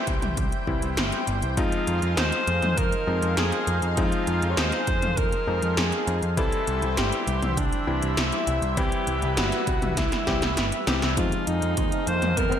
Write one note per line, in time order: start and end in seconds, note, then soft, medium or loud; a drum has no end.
0.00 0.64 E3 medium
0.00 0.64 G3 medium
0.00 0.64 C4 medium
0.00 0.64 E4 loud
0.00 1.53 E4 medium
0.00 1.53 G4 medium
0.00 6.34 C5 medium
0.00 1.53 G5 medium
0.07 0.21 C2 medium
0.07 kick loud
0.07 closed hi-hat medium
0.22 0.36 C2 medium
0.22 closed hi-hat soft
0.22 mid tom loud
0.37 0.51 C2 medium
0.37 kick loud
0.37 closed hi-hat medium
0.52 closed hi-hat soft
0.67 0.81 C2 medium
0.67 1.54 E3 medium
0.67 1.54 G3 medium
0.67 1.54 C4 medium
0.67 1.54 E4 medium
0.67 kick medium
0.82 0.96 C2 medium
0.82 closed hi-hat soft
0.97 1.11 G1 loud
0.97 snare loud
0.97 closed hi-hat medium
1.12 closed hi-hat soft
1.27 1.41 G1 medium
1.27 closed hi-hat medium
1.42 1.56 C2 medium
1.42 closed hi-hat soft
1.57 1.71 F2 loud
1.57 3.04 F3 medium
1.57 3.04 G#3 medium
1.57 3.04 C4 medium
1.57 6.33 D#4 medium
1.57 3.04 D#4 loud
1.57 2.19 F4 loud
1.57 6.33 G#4 medium
1.57 6.33 F5 medium
1.57 kick loud
1.57 closed hi-hat medium
1.72 closed hi-hat soft
1.87 2.01 F2 medium
1.87 closed hi-hat medium
2.02 2.16 F2 medium
2.02 closed hi-hat soft
2.17 2.31 D#2 medium
2.17 2.79 C5 loud
2.17 snare loud
2.17 closed hi-hat medium
2.32 closed hi-hat soft
2.47 2.61 F2 medium
2.47 closed hi-hat medium
2.62 2.76 F2 medium
2.62 closed hi-hat soft
2.62 mid tom loud
2.77 3.36 A#4 loud
2.77 kick loud
2.77 closed hi-hat medium
2.92 closed hi-hat soft
3.07 3.21 F2 medium
3.07 3.94 F3 medium
3.07 3.94 G#3 medium
3.07 3.94 C4 medium
3.07 3.94 D#4 medium
3.22 3.36 F2 medium
3.22 closed hi-hat soft
3.37 3.51 F2 loud
3.37 3.79 G#4 loud
3.37 snare loud
3.37 closed hi-hat medium
3.52 closed hi-hat soft
3.67 3.81 F2 medium
3.67 closed hi-hat medium
3.82 3.96 F2 medium
3.82 closed hi-hat soft
3.97 4.11 F2 loud
3.97 5.44 F3 medium
3.97 5.44 G#3 medium
3.97 5.44 C4 medium
3.97 5.44 D#4 loud
3.97 4.52 F4 loud
3.97 kick loud
3.97 closed hi-hat medium
4.12 closed hi-hat soft
4.27 4.41 F2 medium
4.27 closed hi-hat medium
4.42 4.56 F2 medium
4.42 closed hi-hat soft
4.51 4.59 C#5 medium
4.57 4.71 D#2 loud
4.57 5.19 C5 loud
4.57 snare loud
4.57 closed hi-hat medium
4.72 snare soft
4.72 closed hi-hat soft
4.87 5.01 F2 medium
4.87 kick loud
4.87 closed hi-hat medium
5.02 5.16 F2 medium
5.02 closed hi-hat soft
5.02 mid tom medium
5.17 5.31 F2 loud
5.17 5.79 A#4 loud
5.17 kick loud
5.17 closed hi-hat medium
5.32 closed hi-hat soft
5.47 5.61 F2 medium
5.47 6.34 F3 medium
5.47 6.34 G#3 medium
5.47 6.34 C4 medium
5.47 6.34 D#4 medium
5.62 5.76 F2 medium
5.62 closed hi-hat soft
5.77 5.91 F2 loud
5.77 6.22 G#4 medium
5.77 snare loud
5.77 closed hi-hat medium
5.92 closed hi-hat soft
6.07 6.21 F2 medium
6.07 closed hi-hat medium
6.22 6.36 F2 medium
6.22 closed hi-hat soft
6.37 6.51 C2 loud
6.37 7.84 E3 medium
6.37 7.84 G3 medium
6.37 11.14 G3 medium
6.37 7.84 C4 medium
6.37 7.84 E4 loud
6.37 11.14 E4 medium
6.37 6.99 A4 loud
6.37 8.75 C5 medium
6.37 11.14 E5 medium
6.37 kick loud
6.37 closed hi-hat medium
6.52 closed hi-hat soft
6.67 6.81 C2 medium
6.67 closed hi-hat medium
6.82 6.96 C2 medium
6.82 closed hi-hat soft
6.97 7.11 G1 loud
6.97 7.59 G4 loud
6.97 snare loud
6.97 closed hi-hat medium
7.12 closed hi-hat soft
7.27 7.41 C2 medium
7.27 closed hi-hat medium
7.42 7.56 C2 medium
7.42 closed hi-hat soft
7.42 mid tom medium
7.57 7.71 C2 loud
7.57 8.19 D4 medium
7.57 kick loud
7.57 closed hi-hat medium
7.73 closed hi-hat soft
7.87 8.01 C2 medium
7.87 8.74 E3 medium
7.87 8.74 G3 medium
7.87 8.74 C4 medium
7.87 8.74 E4 medium
8.02 8.16 C2 medium
8.02 closed hi-hat soft
8.17 8.31 C2 medium
8.17 8.62 E4 medium
8.17 snare loud
8.17 closed hi-hat medium
8.32 closed hi-hat soft
8.47 8.61 C2 medium
8.47 closed hi-hat medium
8.62 8.75 C2 medium
8.62 closed hi-hat soft
8.77 8.91 C2 loud
8.77 10.24 E3 medium
8.77 10.24 G3 medium
8.77 10.24 C4 medium
8.77 10.24 E4 loud
8.77 9.39 G4 loud
8.77 11.15 B4 medium
8.77 kick loud
8.77 closed hi-hat medium
8.92 closed hi-hat soft
9.07 9.21 C2 medium
9.07 closed hi-hat medium
9.22 9.36 C2 medium
9.22 closed hi-hat soft
9.37 9.51 G1 loud
9.37 9.99 F#4 medium
9.37 snare loud
9.37 closed hi-hat medium
9.52 snare soft
9.52 closed hi-hat soft
9.67 9.81 C2 medium
9.67 kick loud
9.67 closed hi-hat medium
9.82 9.96 C2 medium
9.82 closed hi-hat soft
9.82 mid tom medium
9.97 10.11 C2 medium
9.97 10.87 E4 medium
9.97 kick loud
9.97 snare medium
9.97 closed hi-hat medium
10.12 snare medium
10.12 closed hi-hat soft
10.27 10.41 C2 medium
10.27 10.43 E3 medium
10.27 10.43 G3 medium
10.27 10.43 C4 medium
10.27 10.43 G4 medium
10.27 kick medium
10.27 snare medium
10.27 closed hi-hat soft
10.42 10.56 C2 medium
10.42 snare medium
10.42 closed hi-hat soft
10.57 10.71 G1 loud
10.57 snare medium
10.57 closed hi-hat medium
10.72 closed hi-hat soft
10.87 11.01 C2 medium
10.87 11.14 E3 medium
10.87 11.14 G3 medium
10.87 11.14 C4 medium
10.87 11.14 G4 medium
10.87 snare loud
10.87 closed hi-hat medium
11.02 11.16 C2 medium
11.02 snare medium
11.02 closed hi-hat soft
11.17 11.31 F2 medium
11.17 12.60 F3 medium
11.17 12.60 G#3 medium
11.17 12.60 C4 medium
11.17 12.60 D#4 medium
11.17 11.49 F4 loud
11.17 12.60 G#4 medium
11.17 12.60 F5 medium
11.17 kick medium
11.17 closed hi-hat medium
11.17 mid tom soft
11.17 riser medium
11.32 closed hi-hat soft
11.47 11.61 F2 medium
11.47 12.09 D#4 loud
11.47 closed hi-hat medium
11.62 11.76 F2 medium
11.62 closed hi-hat soft
11.77 11.91 D#2 loud
11.77 kick loud
11.77 closed hi-hat medium
11.77 mid tom soft
11.92 closed hi-hat soft
12.07 12.21 F2 medium
12.07 12.39 C5 loud
12.07 closed hi-hat medium
12.22 12.36 F2 medium
12.22 closed hi-hat soft
12.22 mid tom medium
12.37 12.51 F2 loud
12.37 12.60 A#4 loud
12.37 kick loud
12.37 closed hi-hat medium
12.37 mid tom medium
12.52 closed hi-hat soft